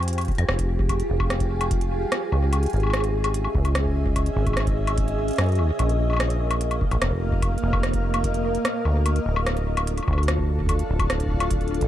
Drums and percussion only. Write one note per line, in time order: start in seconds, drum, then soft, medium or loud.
0.03 closed hi-hat soft
0.08 closed hi-hat medium
0.13 closed hi-hat soft
0.18 closed hi-hat soft
0.18 high woodblock medium
0.21 closed hi-hat soft
0.25 kick loud
0.25 closed hi-hat soft
0.28 closed hi-hat soft
0.32 closed hi-hat soft
0.35 closed hi-hat soft
0.38 closed hi-hat soft
0.38 high woodblock medium
0.49 cross-stick loud
0.59 kick medium
0.59 closed hi-hat medium
0.79 kick loud
0.89 kick loud
0.89 closed hi-hat medium
0.89 high woodblock medium
1.00 closed hi-hat soft
1.20 kick loud
1.20 high woodblock medium
1.30 cross-stick loud
1.30 closed hi-hat medium
1.40 kick loud
1.40 closed hi-hat medium
1.61 closed hi-hat medium
1.61 high woodblock medium
1.71 kick loud
1.71 closed hi-hat medium
1.81 closed hi-hat soft
2.12 cross-stick loud
2.12 closed hi-hat medium
2.32 high woodblock soft
2.53 closed hi-hat medium
2.53 high woodblock medium
2.63 closed hi-hat soft
2.66 closed hi-hat soft
2.70 closed hi-hat soft
2.73 closed hi-hat soft
2.76 closed hi-hat soft
2.80 closed hi-hat soft
2.80 high woodblock soft
2.87 high woodblock soft
2.90 cross-stick loud
2.90 closed hi-hat medium
2.90 high woodblock soft
2.94 high woodblock soft
2.97 high woodblock medium
3.00 closed hi-hat medium
3.00 high woodblock medium
3.24 closed hi-hat soft
3.24 high woodblock medium
3.34 closed hi-hat medium
3.44 high woodblock soft
3.55 kick loud
3.65 closed hi-hat soft
3.65 high woodblock soft
3.75 cross-stick loud
3.75 closed hi-hat medium
3.85 kick medium
4.06 kick loud
4.16 kick loud
4.16 closed hi-hat medium
4.16 high woodblock medium
4.26 closed hi-hat soft
4.47 kick loud
4.47 closed hi-hat soft
4.47 high woodblock soft
4.53 cross-stick loud
4.53 closed hi-hat medium
4.53 high woodblock soft
4.60 high woodblock medium
4.67 kick loud
4.67 closed hi-hat soft
4.87 closed hi-hat soft
4.87 high woodblock medium
4.98 kick loud
4.98 closed hi-hat medium
5.08 closed hi-hat soft
5.28 closed hi-hat soft
5.31 closed hi-hat soft
5.33 closed hi-hat soft
5.36 cross-stick loud
5.36 closed hi-hat soft
5.38 closed hi-hat medium
5.44 closed hi-hat soft
5.46 closed hi-hat soft
5.49 closed hi-hat soft
5.52 closed hi-hat soft
5.55 closed hi-hat soft
5.55 high woodblock soft
5.79 closed hi-hat medium
5.79 high woodblock medium
5.89 closed hi-hat soft
6.10 high woodblock soft
6.13 high woodblock soft
6.17 cross-stick loud
6.17 closed hi-hat medium
6.17 high woodblock medium
6.30 closed hi-hat soft
6.51 closed hi-hat soft
6.51 high woodblock medium
6.61 closed hi-hat medium
6.71 closed hi-hat soft
6.71 high woodblock soft
6.81 kick loud
6.91 closed hi-hat soft
6.91 high woodblock soft
7.02 cross-stick loud
7.02 closed hi-hat medium
7.12 kick medium
7.32 kick loud
7.42 kick loud
7.42 closed hi-hat medium
7.42 high woodblock medium
7.58 closed hi-hat soft
7.73 kick loud
7.73 high woodblock medium
7.83 cross-stick loud
7.83 closed hi-hat medium
7.93 kick loud
7.93 closed hi-hat soft
8.14 closed hi-hat soft
8.14 high woodblock medium
8.24 kick loud
8.24 closed hi-hat medium
8.34 closed hi-hat soft
8.55 closed hi-hat soft
8.65 cross-stick loud
8.65 closed hi-hat medium
8.85 high woodblock soft
9.06 closed hi-hat medium
9.06 high woodblock medium
9.16 closed hi-hat soft
9.36 high woodblock medium
9.46 cross-stick loud
9.46 closed hi-hat medium
9.57 closed hi-hat soft
9.77 closed hi-hat soft
9.77 high woodblock medium
9.87 closed hi-hat medium
9.98 closed hi-hat soft
9.98 high woodblock soft
10.03 high woodblock soft
10.08 kick loud
10.08 high woodblock soft
10.13 high woodblock soft
10.18 high woodblock soft
10.23 closed hi-hat soft
10.28 cross-stick loud
10.28 closed hi-hat medium
10.38 kick medium
10.59 kick soft
10.61 kick medium
10.64 kick medium
10.66 kick medium
10.66 closed hi-hat medium
10.66 high woodblock medium
10.69 kick loud
10.79 closed hi-hat soft
11.00 kick loud
11.00 closed hi-hat soft
11.00 high woodblock medium
11.10 cross-stick loud
11.10 closed hi-hat medium
11.20 kick soft
11.20 closed hi-hat soft
11.27 kick medium
11.34 kick medium
11.40 closed hi-hat medium
11.40 high woodblock medium
11.51 kick loud
11.51 closed hi-hat medium
11.61 closed hi-hat soft
11.68 closed hi-hat soft
11.74 closed hi-hat soft
11.81 closed hi-hat soft